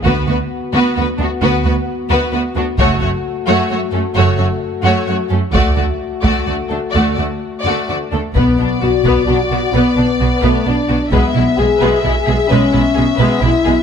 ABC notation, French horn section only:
X:1
M:3/4
L:1/8
Q:1/4=130
K:Bdor
V:1 name="French horn section"
[B,F]6- | [B,F]6 | [A,F]6- | [A,F]6 |
[A,F]6- | [A,F]4- [A,F] z | B,2 F2 (3F F F | B,3 A, D2 |
B,2 G2 (3G G G | C3 B, E2 |]